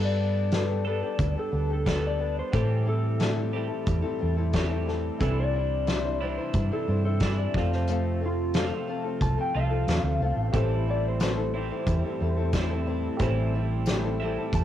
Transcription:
Already playing: G2 G3 B3 D4 G4 A4
0.05 D5
0.19 B3 D4 G4 A4
0.52 G3 B3 D4 G4 A4, snare, closed hi-hat
0.69 D4 G4 A4
0.86 G3 B3 D4 G4 A4
1.02 D4 G4 A4
1.19 D2, kick, closed hi-hat
1.35 D4 G4 A4
1.39 A4
1.52 D2 B3 D4 G4 A4
1.69 D4 G4 A4
1.73 A4
1.85 G3 B3 D4 G4 A4, kick, snare, closed hi-hat
2.02 D4 G4 A4
2.07 D5
2.18 B3 D4 G4 A4
2.39 C5
2.52 A2 E3 G3 C4 E4 A4, kick, closed hi-hat
2.56 G4
2.85 G3 C4 E4 A4
3.19 A2 E3 G3 C4 E4 A4, snare, closed hi-hat
3.36 G3 C4 E4 A4
3.51 G3 C4 E4 G4 A4
3.56 A2 E3 G3
3.68 G3 C4 E4 A4
3.86 E2, kick, closed hi-hat
4.02 G3 C4 E4 A4
4.19 E2 G3 C4 E4 A4
4.37 G3 C4 E4 A4
4.52 A2 E3 G3 C4 E4 A4, kick, snare, closed hi-hat
4.58 G4
4.70 G3 C4 E4 A4
4.86 G3 C4 E4 A4, snare
5.19 C2 C3 E3 G3 D4 E4 A4 C5, kick, closed hi-hat
5.40 D5
5.53 G3 D4 E4 C5
5.87 C3 E3 G3 D4 E4 C5, snare, closed hi-hat
6.04 G3 D4 E4 C5
6.22 C3 E3 G3 D4 E4 C5
6.38 G3 D4 E4 C5
6.54 G2, kick, closed hi-hat
6.71 G3 D4 E4 A4 C5
6.88 G2 G3 D4 E4 C5
7.05 G3 D4 E4 A4 C5
7.20 C3 E3 G3 D4 E4 C5, kick, snare, closed hi-hat
7.38 D5
7.54 F2 C3 F3 A3 C4 F4 A4, kick, snare
7.72 C5, snare
7.87 F3 A3 C4 F4 A4, closed hi-hat
8.21 A3 C4 F4 A4
8.26 F4
8.54 F2 C3 F3 A3 C4 F4 A4, snare, closed hi-hat
8.72 C4 F4 A4
8.87 A3 C4 F4 A4
9.04 C4 F4 A4
9.21 C2 A5, kick, closed hi-hat
9.37 C4 F4 A4 G5
9.54 C2 F3 A3 C4 F4 A4 F5
9.58 F2 C3
9.71 C4 F4 A4
9.87 E2 F3 A3 C4 F4 A4, snare, closed hi-hat
10.03 D2 C4 F4 A4
10.20 C2 A3 C4 F4 A4
10.25 B3 C4
10.30 D4 E4
10.36 A1 F4 G4
10.41 A4 B4
10.47 C5 D5
10.52 A1 A2 E3 G3 C4 E4 G4 A4 C5, kick, closed hi-hat
10.86 G3 C4 E4 A4
10.91 D5
11.09 C5
11.19 A2 E3 G3 C4 E4 A4, snare, closed hi-hat, tambourine
11.36 G3 C4 E4 A4
11.54 E3 G3 C4 E4 A4 C5
11.58 A2
11.70 G3 C4 E4 A4
11.86 E2, kick, closed hi-hat
12.05 G3 C4 E4 A4
12.20 E2 G3 C4 E4 A4
12.36 G3 C4 E4 A4
12.52 A2 E3 G3 C4 E4 A4, kick, snare, closed hi-hat, tambourine
12.70 G3 C4 E4 A4
12.86 G3 C4 E4 A4
13.17 A1 A2 E3 G3 C4 E4 G4 A4 C5, kick, closed hi-hat
13.21 C4 G4 A4
13.54 G3 C4 E4 A4
13.86 A2 E3 G3 C4 E4 A4, snare, closed hi-hat, tambourine
14.04 G3 C4 E4 A4
14.22 A2 E3 G3 C4 E4 A4
14.38 G3 C4 E4 A4
14.53 E2 A5, kick, closed hi-hat

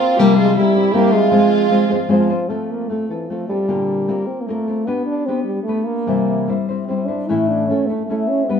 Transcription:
Already playing: A#3 C4 F4 A#4
0.19 C3 F3 G3 A#3 C4 F4 G4 A#4
0.38 G#3 F4
0.56 G3 C4 E4 A#4
0.75 G3 C4 E4 A#4
0.93 G3 A#3 C4 E4 G4 A#4
1.13 G#3 F4
1.31 F3 G#3 C4 F4 C5
1.70 G#3 C4 F4 C5
1.90 G#3 C4 F4 C5
2.09 F3 G#3 C4 F4 C5
2.30 C4 F4 C5
2.49 F3 A3 C4 F4 A4
2.71 A#3
2.89 A3 C4 F4 A4
3.09 E3 C4 F4 A4
3.29 F3 A3 C4 F4 A4
3.49 G3 C4 F4 A4
3.68 A#2 D3 A#3 C4 F4 A#4
4.08 A#3 C4 F4 A#4
4.26 C4
4.41 A#3
4.46 A3 A#3 C4 F4 A#4
4.68 A#3 C4 F4 A#4
4.86 B3 D4 G4 B4
5.06 D4
5.26 B3 C4 D4 G4 B4
5.44 G3
5.63 A3
5.68 B3 D4 G4 B4
5.84 A#3
6.07 C3 E3 G3 C4 E4 C5
6.48 G3 C4 E4 C5
6.69 G3 C4 E4 C5
6.85 G3 C4 E4
6.90 C5
7.06 C4 D4 E4 C5
7.10 G3
7.28 A2 E3 A3 C#4 E4 A4
7.48 D4
7.68 A3 C#4 E4 A4
7.87 A3 C#4 E4 A4
7.91 A3
8.07 A3 E4
8.11 C#4 A4
8.28 C#4
8.44 C4
8.49 G3 B3 D4 G4 B4

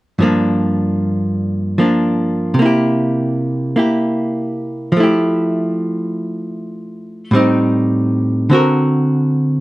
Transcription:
0.19 G2 F3 A#3
0.23 D4
1.78 F3 A#3 D4
2.54 C3
2.59 A#3 E4
2.66 G4
3.76 A#3 E4 G4
4.92 F3
4.97 A3 E4
5.03 G4
7.31 A2 G3 C4
7.36 D#4
8.50 D3 C4 F#4
8.54 A#4

